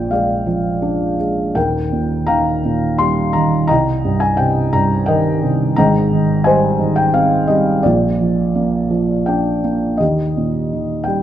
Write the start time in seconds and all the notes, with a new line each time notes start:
Already playing: A#1 A#2 F3 D5 G5
0.11 G#3 G#4 D5 F5
0.46 F3
0.82 D4
1.20 G#3
1.55 D#1 D#2 A#4 G5
1.92 A#2
2.27 D#3 F5 G5 A#5
2.65 A#2
2.98 G3 C6
3.33 D#3 A#5
3.67 C2 D#5 G5 A#5
4.05 G2
4.20 G#5
4.37 C3 G5
4.73 G2 A#5
5.06 D#3 A#4 D#5 G5
5.42 C3
5.76 G#1 G#2 D#5 G5 A#5
6.12 D#3
6.44 G3 C5 D#5 G#5
6.79 D#3
6.96 G5
7.14 C4 F5
7.47 G3 D#5
7.83 A#1 A#2 F4 D5
8.21 F3
8.55 A#3
8.90 F3
9.26 D4 G5
9.64 A#3
9.97 D#2 G4 D#5
10.37 A#2
10.73 D#3
11.04 G3 G5